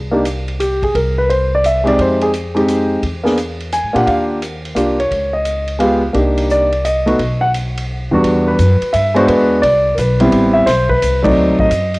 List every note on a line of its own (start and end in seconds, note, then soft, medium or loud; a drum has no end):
0.00 0.90 C2 medium
0.11 0.23 A#3 medium
0.11 0.23 D4 soft
0.11 0.23 D#4 soft
0.11 0.23 G4 medium
0.25 hi-hat pedal medium
0.25 ride medium
0.48 ride soft
0.60 0.82 G4 medium
0.60 hi-hat pedal soft
0.60 ride medium
0.82 0.94 G#4 medium
0.82 kick soft
0.82 ride soft
0.95 1.95 C2 medium
0.95 1.16 A#4 medium
0.95 kick soft
0.95 ride soft
1.18 1.29 B4 medium
1.29 1.51 C5 medium
1.29 ride soft
1.55 1.65 D5 medium
1.64 1.87 E5 medium
1.64 hi-hat pedal medium
1.64 ride medium
1.84 2.29 G#3 medium
1.84 2.30 C4 medium
1.84 2.30 D#4 medium
1.84 2.30 G4 medium
1.84 ride soft
1.88 1.99 D5 medium
1.98 2.99 F2 medium
1.98 2.22 C5 medium
1.98 kick soft
1.98 ride soft
2.21 2.29 G#4 medium
2.21 ride soft
2.33 hi-hat pedal soft
2.33 ride soft
2.55 3.00 G#3 medium
2.55 3.00 C4 medium
2.55 3.00 D#4 medium
2.55 3.00 G4 medium
2.55 ride soft
2.68 hi-hat pedal medium
2.68 ride medium
3.03 3.80 E2 medium
3.03 kick soft
3.03 ride medium
3.24 3.35 A#3 medium
3.24 3.35 B3 medium
3.24 3.36 D4 soft
3.24 3.36 G#4 medium
3.24 snare soft
3.38 hi-hat pedal soft
3.38 ride medium
3.60 ride soft
3.72 3.94 G#5 medium
3.72 hi-hat pedal medium
3.72 ride medium
3.83 3.94 G#2 medium
3.93 4.06 A#2 medium
3.93 4.38 A#3 medium
3.93 4.38 D4 soft
3.93 4.39 F4 soft
3.93 4.39 G4 medium
3.93 4.07 F#5 medium
3.93 ride soft
4.07 4.72 D#2 medium
4.07 4.20 F5 medium
4.07 kick soft
4.07 ride medium
4.42 hi-hat pedal soft
4.42 ride medium
4.65 ride soft
4.75 5.08 C2 medium
4.75 4.96 A#3 soft
4.75 4.97 D4 soft
4.75 4.97 F4 soft
4.75 4.97 G4 medium
4.75 hi-hat pedal medium
4.75 ride medium
5.00 5.32 C#5 medium
5.00 ride soft
5.11 6.11 C#2 medium
5.11 kick soft
5.11 ride soft
5.33 5.77 D#5 medium
5.45 hi-hat pedal soft
5.45 ride medium
5.68 ride soft
5.79 6.00 G#3 medium
5.79 6.01 B3 medium
5.79 6.01 F4 medium
5.79 6.01 G4 medium
5.79 6.02 F5 medium
5.79 ride medium
6.13 7.15 C2 medium
6.13 6.67 A#3 medium
6.13 6.67 D4 soft
6.13 6.68 D#4 soft
6.13 6.68 G4 medium
6.13 kick soft
6.13 ride medium
6.37 ride medium
6.49 6.83 D5 medium
6.49 hi-hat pedal soft
6.72 ride soft
6.85 7.38 D#5 medium
6.85 hi-hat pedal medium
6.85 ride medium
7.06 7.17 A3 medium
7.06 7.18 B3 soft
7.06 7.18 D#4 soft
7.06 7.18 F#4 medium
7.06 ride soft
7.19 8.07 B1 medium
7.19 kick soft
7.19 ride soft
7.41 7.49 F#5 medium
7.54 hi-hat pedal soft
7.54 ride medium
7.77 ride medium
8.11 8.23 D#2 medium
8.11 8.56 E2 medium
8.11 8.56 G3 medium
8.11 8.56 B3 soft
8.11 8.56 D4 medium
8.11 8.57 F#4 medium
8.24 8.57 E2 medium
8.24 kick soft
8.24 ride medium
8.47 8.90 B4 medium
8.59 8.80 F#2 medium
8.59 kick soft
8.59 hi-hat pedal soft
8.59 ride medium
8.81 muted upright bass stroke soft
8.81 ride soft
8.93 9.27 G2 medium
8.93 9.15 E5 medium
8.93 kick soft
8.93 hi-hat pedal medium
8.93 ride medium
9.14 9.59 G#3 medium
9.14 9.60 B3 medium
9.14 9.60 D4 medium
9.14 9.60 F#4 medium
9.14 9.27 C5 medium
9.14 ride soft
9.27 9.61 E2 medium
9.27 9.60 B4 medium
9.27 kick soft
9.27 ride medium
9.62 9.96 C2 medium
9.62 9.94 D5 medium
9.62 kick soft
9.62 ride medium
9.94 10.31 B1 medium
9.94 9.97 A#4 soft
9.94 kick soft
9.94 hi-hat pedal medium
9.94 ride medium
9.99 10.51 B4 medium
10.20 10.64 G3 medium
10.20 10.64 B3 medium
10.20 10.64 C4 medium
10.20 10.64 E4 medium
10.20 ride soft
10.32 10.65 A1 medium
10.32 kick soft
10.32 ride medium
10.53 10.65 E5 medium
10.66 11.00 B1 medium
10.66 10.88 C5 medium
10.66 kick soft
10.66 snare soft
10.66 hi-hat pedal soft
10.66 ride medium
10.89 11.21 B4 medium
10.89 kick medium
11.02 11.35 C2 medium
11.02 kick soft
11.02 hi-hat pedal medium
11.02 ride medium
11.23 11.67 F#3 medium
11.23 11.67 A3 soft
11.23 11.68 C4 medium
11.23 11.68 D#4 medium
11.23 11.56 D5 medium
11.23 kick medium
11.23 ride medium
11.36 11.48 D2 medium
11.48 11.59 C2 medium
11.59 11.70 A1 medium
11.59 11.99 D#5 medium
11.59 kick medium
11.71 11.99 F#2 medium
11.71 hi-hat pedal medium
11.71 ride medium
11.94 ride soft